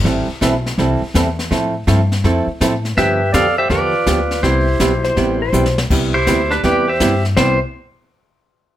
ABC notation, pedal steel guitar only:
X:1
M:4/4
L:1/8
Q:"Swing" 1/4=164
K:C
V:1 name="Pedal steel guitar"
z8 | z8 | [Ge]2 [Af] [Ge] [Fd]4 | [Ec]6 z2 |
z [Ec]2 [DB] [Gd] [Ge]2 z | c z6 z |]